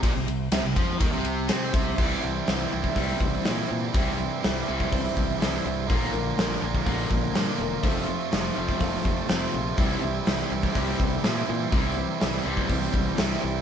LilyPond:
<<
  \new Staff \with { instrumentName = "Steel-string acoustic guitar" } { \time 4/4 \key c \mixolydian \tempo 4 = 123 r1 | <c g c' e' c''>8 <c' e' c''>8 <g c' e' c''>8 <c' e' c''>8 <c g c' e' c''>4 <g c' e' c''>4 | <c g c' e' c''>8 <c' e' c''>8 <g c' e' c''>4 <c g c' e' c''>4 <g c' e' c''>4 | <bes, d f bes d' bes'>8 <f bes d' bes'>8 <f bes d' bes'>8 <f bes d' bes'>8 <bes, d f bes d' bes'>4 <f bes d' bes'>8 <f bes d' bes'>8 |
<f c' f' a'>8 <c' f' a'>8 <f c' f' a'>4 <f c' f' a'>4 <f c' f' a'>8 <c' f' a'>8 | <c g c' e' g'>8 <c' e' g'>8 <g c' e' g'>4 <c g c' e' g'>4 <g c' e' g'>8 <c' e' g'>8 | <c g c' e' g'>8 <c' e' g'>8 <g c' e' g'>4 <c g c' e' g'>4 <g c' e' g'>4 | }
  \new Staff \with { instrumentName = "Distorted electric guitar" } { \clef bass \time 4/4 \key c \mixolydian bes,16 c16 c8 c16 c16 f8 ees16 c8. c'8 c8 | <c e g c' e'>4. <c e g c' e'>4. <c e g c' e'>4 | <c e g c' e'>4. <c e g c' e'>4. <c e g c' e'>4 | <bes, d bes d' f'>4. <bes, d bes d' f'>4. <bes, d bes d' f'>4 |
<f, c f a c' f'>4. <f, c f a c' f'>4. <f, c f a c' f'>4 | <c e g c' e'>4. <c e g c' e'>4. <c e g c' e'>4 | <c e g c' e'>4. <c e g c' e'>4. <c e g c' e'>4 | }
  \new Staff \with { instrumentName = "Distorted electric guitar" } { \clef bass \time 4/4 \key c \mixolydian bes,16 c16 c8 c16 c16 f8 ees16 c8. c'8 c8 | <c e g>8 <c e>8 <c e>8 <c e>8 <c e g>8 <c e>8 <c e>8 <c e>8 | <c e g>8 <c e>8 <c e>8 <c e g>8 <c e>8 <c e>8 <c e>8 <c e>8 | <bes, d bes>8 <bes, d>8 <bes, d>8 <bes, d>8 <bes, d bes>8 <bes, d>8 <bes, d>8 <bes, d>8 |
<f, c f>8 <f, c>8 <f, c>8 <f, c f>8 <f, c>8 <f, c>8 <f, c>8 <f, c>8 | <c e g>8 <c e>8 <c e>8 <c e>8 <c e g>8 <c e>8 <c e>8 <c e>8 | <c e g>8 <c e>8 <c e>8 <c e g>8 <c e>8 <c e>8 <c e>8 <c e>8 | }
  \new Staff \with { instrumentName = "Fingered electric bass" } { \clef bass \time 4/4 \key c \mixolydian bes,,16 c,16 c,8 c,16 c,16 f,8 ees,16 c,8. c8 c,8 | c,8 c,8 c,8 c,8 c,8 c,8 bes,8 bes,8 | c,4 c,8 c,8 c,8 c,8 c,8 c,8 | bes,,8 bes,,8 bes,,8 bes,,8 bes,,8 bes,,8 g,8 e,,8 |
f,,4 f,,8 f,,8 f,,8 f,,8 f,,8 bes,,8 | c,8 c,8 c,8 c,8 c,8 c,8 bes,8 bes,8 | c,4 c,8 c,8 c,8 c,8 c,8 c,8 | }
  \new DrumStaff \with { instrumentName = "Drums" } \drummode { \time 4/4 <bd cymr>8 cymr8 <cymr sn>8 <bd cymr>8 <bd cymr>8 cymr8 <cymr sn>8 <bd cymr>8 | <cymc bd>4 <hho sn>8. bd16 <hho bd>8 bd8 <hho sn>4 | <hho bd>4 <hho sn>8. bd16 <hho bd>8 bd8 <hho sn>4 | <hho bd>4 <hho sn>8. bd16 <hho bd>8 bd8 <hho sn>4 |
<hho bd>4 <hho sn>8. bd16 <hho bd>8 bd8 <hho sn>4 | <hho bd>4 <hho sn>8. <bd sn>16 <hho bd>8 bd8 <hho sn>4 | <hho bd>4 <hho sn>8. bd16 <hho bd>8 bd8 <hho sn>4 | }
>>